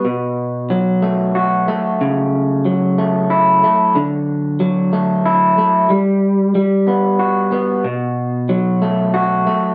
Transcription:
\new Staff \with { instrumentName = "Clean electric guitar" } { \time 6/8 \key b \minor \tempo 4. = 62 b,4 fis8 a8 fis'8 a8 | cis4 fis8 a8 e'8 a8 | d4 fis8 a8 e'8 a8 | g4 g8 b8 fis'8 b8 |
b,4 fis8 a8 fis'8 a8 | }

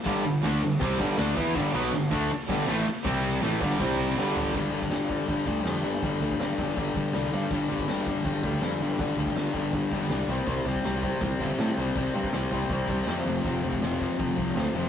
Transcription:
<<
  \new Staff \with { instrumentName = "Distorted electric guitar" } { \clef bass \time 4/4 \key g \mixolydian \tempo 4 = 161 <g, d g>8 <g, d>8 <d a d'>8 <g, d>8 <c g c'>8 <g, d g>8 <d a d'>8 <e b e'>8 | <g, d g>8 <b, fis b>8 <g, d>8 <d a d'>8 r8 <g, d g>8 <a, e a>8 r8 | <c g c'>4 <a, e a>8 <g, d g>8 <c g c'>4 <g, d g>4 | r1 |
r1 | r1 | r1 | r1 |
r1 | r1 | }
  \new Staff \with { instrumentName = "Distorted electric guitar" } { \clef bass \time 4/4 \key g \mixolydian <g, d g>8 <g, d>8 <d a d'>8 <g, d>8 <c g c'>8 <g, d g>8 <d a d'>8 <e b e'>8 | <g, d g>8 <b, fis b>8 <g, d>8 <d a d'>8 r8 <g, d g>8 <a, e a>8 r8 | <c g c'>4 <a, e a>8 <g, d g>8 <c g c'>4 <g, d g>4 | r1 |
r1 | r1 | r1 | r1 |
r1 | r1 | }
  \new Staff \with { instrumentName = "Overdriven electric guitar" } { \clef bass \time 4/4 \key g \mixolydian <g, d g>8 <g, d>8 <d a d'>8 <g, d>8 <c g c'>8 <g, d g>8 <d a d'>8 <e b e'>8 | <g, d g>8 <b, fis b>8 <g, d>8 <d a d'>8 r8 <g, d g>8 <a, e a>8 r8 | <c g c'>4 <a, e a>8 <g, d g>8 <c g c'>4 <g, d g>4 | <g, d g>8 <g, d g>8 <g, d g>8 <g, d g>8 <g, d g>8 <g, d g>8 <g, d g>8 <g, d g>8 |
<g, d g>8 <g, d g>8 <g, d g>8 <g, d g>8 <g, d g>8 <g, d g>8 <g, d g>8 <g, d g>8 | <g, d g>8 <g, d g>8 <g, d g>8 <g, d g>8 <g, d g>8 <g, d g>8 <g, d g>8 <g, d g>8 | <g, d g>8 <g, d g>8 <g, d g>8 <g, d g>8 <g, d g>8 <g, d g>8 <g, d g>8 <c g c'>8 | <c g c'>8 <c g c'>8 <c g c'>8 <c g c'>8 <c g c'>8 <c g c'>8 <c g c'>8 <c g c'>8 |
<c g c'>8 <c g c'>8 <c g c'>8 <c g c'>8 <c g c'>8 <c g c'>8 <c g c'>8 <f, c f>8 | <f, c f>8 <f, c f>8 <f, c f>8 <f, c f>8 <f, c f>8 <f, c f>8 <f, c f>8 <f, c f>8 | }
  \new Staff \with { instrumentName = "Picked electric bass" } { \clef bass \time 4/4 \key g \mixolydian g,,8 g,,8 d,8 g,,8 c,8 g,,8 d,8 e,8 | g,,8 b,,8 g,,8 d,8 r8 g,,8 a,,8 r8 | c,4 a,,8 g,,8 c,4 g,,4 | g,,8 g,,8 g,,4 g,,8 d,8 f,8 g,,8 |
g,,8 d,8 g,,8 g,,8 g,,8 g,,8 c,8 g,8 | g,,8 g,,8 g,,4 g,,8 d,8 f,8 g,,8 | g,,8 d,8 g,,8 g,,8 g,,8 g,,8 c,8 c,8 | c,8 c,8 c,4 c,8 g,,8 a,8 c,8 |
c,8 g,8 c,8 c,8 c,8 c,8 f,8 f,,8 | f,,8 f,,8 f,,4 f,,8 c,8 d,8 f,,8 | }
  \new DrumStaff \with { instrumentName = "Drums" } \drummode { \time 4/4 <cymc bd>8 cymc8 <cymc sn>8 cymc8 <cymc bd>8 <cymc bd>8 <cymc sn>8 <cymc bd>8 | <cymc bd>8 cymc8 <cymc sn>8 <cymc bd>8 cymc8 <cymc bd>8 <cymc sn>8 cymc8 | <cymc bd>8 cymc8 <cymc sn>8 <cymc bd>8 <cymc bd>8 cymc8 sn8 tomfh8 | <cymc bd>8. bd16 <hho sn>8 bd8 <hho bd>8 bd8 <hho sn>4 |
<hho bd>8. bd16 <hho sn>8 bd8 <hho bd>8 bd8 <hho sn>4 | <hho bd>8. bd16 <hho sn>8 bd8 <hho bd>8 bd8 <hho sn>4 | <hho bd>8. bd16 <hho sn>8 bd8 <hho bd>8 bd8 <hho sn>4 | <cymc bd>8. bd16 <hho sn>8 bd8 <hho bd>8 bd8 <hho sn>4 |
<hho bd>8. bd16 <hho sn>8 bd8 <hho bd>8 bd8 <hho sn>4 | <hho bd>8. bd16 <hho sn>8 bd8 <hho bd>8 bd8 <hho sn>4 | }
>>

